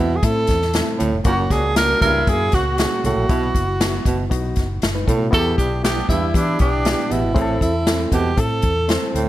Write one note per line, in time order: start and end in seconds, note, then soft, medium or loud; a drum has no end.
0.00 0.18 E2 medium
0.00 0.18 B2 medium
0.00 0.17 E4 medium
0.16 0.26 G#4 medium
0.23 0.44 A2 medium
0.23 0.58 A3 medium
0.23 0.29 B3 medium
0.23 0.59 E4 medium
0.23 1.00 A4 medium
0.23 kick medium
0.23 closed hi-hat medium
0.30 0.62 C4 medium
0.47 0.80 E2 medium
0.47 kick medium
0.47 snare soft
0.47 closed hi-hat medium
0.62 snare soft
0.74 1.09 A3 medium
0.74 1.10 C4 medium
0.74 0.81 D#4 medium
0.74 snare loud
0.74 closed hi-hat medium
0.81 1.13 E4 medium
0.98 1.11 D2 medium
0.98 1.19 A2 medium
0.98 closed hi-hat medium
1.13 1.23 F1 medium
1.25 1.46 F#1 loud
1.25 1.45 F#2 medium
1.25 1.61 A#3 medium
1.25 1.61 C#4 medium
1.25 1.32 F4 medium
1.25 1.53 F#4 medium
1.25 kick loud
1.25 closed hi-hat medium
1.33 1.65 F#4 loud
1.50 1.93 C#2 loud
1.50 1.71 A#3 medium
1.50 1.71 D4 medium
1.50 1.76 G#4 medium
1.50 kick medium
1.50 snare soft
1.50 closed hi-hat medium
1.75 1.96 A#3 medium
1.75 2.12 A#3 medium
1.75 2.12 C#4 medium
1.75 1.96 D4 medium
1.75 1.83 F4 medium
1.75 2.00 A#4 loud
1.75 snare loud
1.75 closed hi-hat medium
1.83 2.15 F#4 medium
2.00 2.23 C#2 medium
2.00 2.22 G2 medium
2.00 2.49 C#3 loud
2.00 2.49 A#3 loud
2.00 2.48 E4 loud
2.00 2.31 A#4 medium
2.00 kick medium
2.00 closed hi-hat medium
2.27 2.48 F#2 medium
2.27 2.33 A3 medium
2.27 2.63 C#4 medium
2.27 2.63 F#4 medium
2.27 2.56 G#4 loud
2.27 kick medium
2.27 closed hi-hat medium
2.34 2.66 A#3 medium
2.52 2.85 C#2 medium
2.52 3.00 C#3 medium
2.52 3.00 A#3 medium
2.52 3.00 F#4 medium
2.52 3.04 F#4 medium
2.52 kick medium
2.52 snare soft
2.52 closed hi-hat medium
2.78 3.14 A#3 medium
2.78 3.14 C#4 medium
2.78 3.15 G#4 medium
2.78 snare medium
2.78 closed hi-hat medium
3.03 3.14 C2 medium
3.03 3.24 A2 medium
3.03 4.54 F#4 loud
3.03 closed hi-hat medium
3.16 3.27 A#1 medium
3.29 3.50 B1 medium
3.29 3.49 B2 medium
3.29 3.65 B3 medium
3.29 3.65 E4 medium
3.29 3.66 F#4 loud
3.29 kick loud
3.29 closed hi-hat medium
3.55 3.97 F#1 medium
3.55 kick medium
3.55 closed hi-hat medium
3.80 4.16 B3 medium
3.80 3.86 D#4 medium
3.80 4.17 F#4 medium
3.80 snare loud
3.80 closed hi-hat medium
3.87 4.19 E4 medium
4.05 4.27 F#1 medium
4.05 4.26 B2 medium
4.05 kick medium
4.05 closed hi-hat medium
4.30 4.52 B1 medium
4.30 4.66 B3 medium
4.30 4.66 D#4 medium
4.30 4.67 F#4 medium
4.30 kick medium
4.30 closed hi-hat medium
4.56 4.78 F#1 medium
4.56 kick medium
4.56 snare soft
4.56 closed hi-hat medium
4.82 5.03 F#1 medium
4.82 snare loud
4.82 closed hi-hat medium
4.95 5.07 D#4 medium
4.95 5.07 B4 medium
5.07 5.28 A2 medium
5.07 5.29 B2 medium
5.07 5.19 A4 medium
5.07 kick medium
5.07 closed hi-hat medium
5.19 5.44 A3 medium
5.19 5.32 F#4 medium
5.31 5.54 E2 medium
5.31 5.53 E2 medium
5.31 5.67 B3 loud
5.31 5.68 E4 medium
5.31 5.39 F#4 medium
5.31 5.57 A4 loud
5.31 kick loud
5.31 closed hi-hat medium
5.39 5.71 G4 loud
5.57 6.01 B1 medium
5.57 5.78 D3 medium
5.57 5.78 B3 medium
5.57 5.78 D4 medium
5.57 5.82 G4 medium
5.57 kick medium
5.57 closed hi-hat medium
5.82 6.04 D3 medium
5.82 6.19 B3 medium
5.82 6.04 B3 medium
5.82 6.04 D4 loud
5.82 6.19 E4 medium
5.82 6.19 G4 medium
5.82 6.08 G4 medium
5.82 snare loud
5.82 closed hi-hat loud
6.09 6.30 E2 medium
6.09 6.29 G2 medium
6.09 6.57 B2 loud
6.09 6.57 G3 loud
6.09 6.38 E4 medium
6.09 6.57 E4 loud
6.09 kick medium
6.09 closed hi-hat medium
6.34 6.56 E3 loud
6.34 6.70 B3 medium
6.34 6.61 D4 medium
6.34 6.70 E4 medium
6.34 6.71 G4 medium
6.34 kick medium
6.34 closed hi-hat medium
6.59 6.92 B1 medium
6.59 7.07 E3 medium
6.59 7.07 B3 medium
6.59 7.13 D4 medium
6.59 7.08 G4 medium
6.59 kick medium
6.59 closed hi-hat medium
6.85 7.21 B3 medium
6.85 7.21 E4 medium
6.85 6.92 F#4 medium
6.85 snare loud
6.85 closed hi-hat medium
6.92 7.25 G4 medium
7.09 7.22 A1 medium
7.09 7.30 B2 medium
7.09 7.62 E4 medium
7.09 closed hi-hat medium
7.23 7.34 G#1 medium
7.34 7.58 A1 medium
7.34 7.56 A2 medium
7.34 7.71 C4 loud
7.34 7.71 E4 medium
7.34 7.42 G#4 medium
7.34 kick loud
7.34 closed hi-hat medium
7.42 7.75 A4 loud
7.61 8.04 E2 medium
7.61 8.09 E4 medium
7.61 kick medium
7.61 closed hi-hat medium
7.86 7.93 B3 medium
7.86 8.23 E4 medium
7.86 8.23 A4 medium
7.86 snare loud
7.86 closed hi-hat medium
7.92 8.25 C4 medium
8.11 8.34 E2 medium
8.11 8.32 B2 medium
8.11 8.41 G4 medium
8.11 kick medium
8.11 closed hi-hat medium
8.36 8.59 A2 loud
8.36 8.73 C4 medium
8.36 8.73 E4 medium
8.36 8.74 A4 medium
8.36 9.16 A4 medium
8.36 kick loud
8.36 closed hi-hat medium
8.62 8.96 E2 medium
8.62 kick medium
8.62 closed hi-hat medium
8.88 9.24 C4 medium
8.88 9.25 E4 medium
8.88 9.25 C5 medium
8.88 snare loud
8.88 closed hi-hat medium
9.14 9.25 D2 medium
9.14 9.29 A2 medium
9.14 closed hi-hat medium